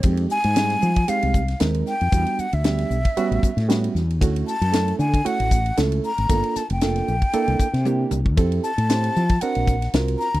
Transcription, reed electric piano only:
0.05 G#3 C4 D#4 G4
0.56 G3 G#3 C4 D#4
1.08 G#3 C4 D#4 G4
1.60 G#3 C4 D#4 A#4
2.12 G3 B3 D4 F#4
2.64 G3 B3 D4 G4
3.17 G3 B3 C#4 F#4
3.69 G3 B3 C#4 F#4
4.21 A3 C#4 E4 F#4
4.72 A3 C#4 E4 A4
5.25 A3 C#4 E4 F#4
5.78 A3 C#4 E4 A4
6.29 A#3 D4 F4 A4
6.82 A#3 D4 F4 A4
7.34 A#3 D4 E4 A4
7.86 A#3 D4 E4 G4
8.37 C4 E4 G4 A4
8.89 C4 E4 G4 C5
9.42 C4 D4 F#4 A#4
9.94 C4 F4 F#4 A#4

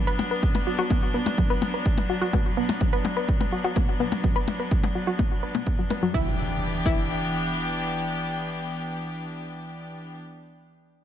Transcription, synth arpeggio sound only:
0.07 B4
0.31 B4
0.67 F#4
0.79 F#4
0.91 B3
1.14 B3
1.38 F#3
1.50 B4
1.74 B4
2.10 F#4
2.21 F#4
2.33 B3
2.57 B3
2.81 F#3
2.93 B4
3.17 B4
3.52 F#4
3.64 F#4
3.76 B3
4.00 B3
4.24 F#3
4.36 B4
4.60 B4
4.95 F#4
5.07 F#4
5.19 B3
5.43 B4
5.55 B3
5.67 B3
5.79 F#3
5.91 B4
6.03 F#3
6.14 E4
6.86 E4

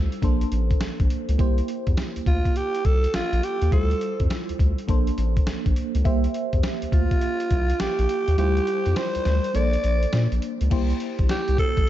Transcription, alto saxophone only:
2.27 F4
2.56 G4
2.85 A4
3.15 F4
3.44 G4
3.73 A4
6.93 F4
7.80 G4
8.38 G4
8.97 C5
9.55 D5
11.31 G4
11.59 A4

